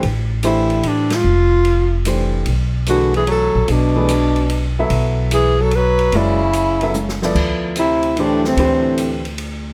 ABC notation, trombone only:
X:1
M:3/4
L:1/8
Q:"Swing" 1/4=147
K:Dlyd
V:1 name="Trombone" clef=bass
z6 | z6 | z2 D, E, F,2 | B,,4- B,, z |
z2 E, F, F,2 | C,4- C, z | z2 =C,2 A,, A,,- | A,,3 z3 |]